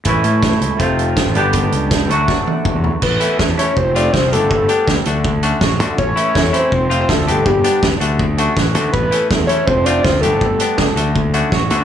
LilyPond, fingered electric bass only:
\new Staff \with { instrumentName = "Fingered electric bass" } { \clef bass \time 4/4 \key a \mixolydian \tempo 4 = 162 a,,8 a,4 cis,16 r16 f,,4~ f,,16 a,,16 g,,8~ | g,,8 cis,4 d,8 r4 r16 e,8 r16 | a,,8 r8 e,8 r8 f,,4 c,8 g,,8 | g,,8 r8 d,16 r16 d,4. a,,8 d,8 |
a,,8 r8 e,8 r8 f,,4 d,8 g,,8 | g,,8 r8 d,16 r16 d,4. a,,8 d,8 | a,,8 r8 e,8 r8 f,,4 d,8 g,,8 | g,,8 r8 cis,16 r16 d,4. a,,8 d,8 | }